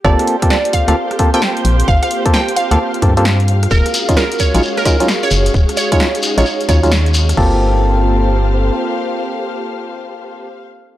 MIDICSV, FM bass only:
0, 0, Header, 1, 2, 480
1, 0, Start_track
1, 0, Tempo, 458015
1, 47, Time_signature, 4, 2, 24, 8
1, 11502, End_track
2, 0, Start_track
2, 0, Title_t, "FM bass"
2, 0, Program_c, 0, 39
2, 48, Note_on_c, 0, 31, 98
2, 158, Note_off_c, 0, 31, 0
2, 922, Note_on_c, 0, 38, 94
2, 983, Note_off_c, 0, 38, 0
2, 1727, Note_on_c, 0, 34, 99
2, 1918, Note_off_c, 0, 34, 0
2, 1968, Note_on_c, 0, 31, 101
2, 2078, Note_off_c, 0, 31, 0
2, 2842, Note_on_c, 0, 38, 93
2, 2903, Note_off_c, 0, 38, 0
2, 3169, Note_on_c, 0, 43, 85
2, 3849, Note_off_c, 0, 43, 0
2, 3889, Note_on_c, 0, 27, 99
2, 3998, Note_off_c, 0, 27, 0
2, 4762, Note_on_c, 0, 34, 92
2, 4823, Note_off_c, 0, 34, 0
2, 5568, Note_on_c, 0, 30, 99
2, 5758, Note_off_c, 0, 30, 0
2, 5808, Note_on_c, 0, 27, 101
2, 5918, Note_off_c, 0, 27, 0
2, 6682, Note_on_c, 0, 34, 96
2, 6743, Note_off_c, 0, 34, 0
2, 7008, Note_on_c, 0, 39, 87
2, 7688, Note_off_c, 0, 39, 0
2, 7728, Note_on_c, 0, 31, 100
2, 9126, Note_off_c, 0, 31, 0
2, 11502, End_track
0, 0, End_of_file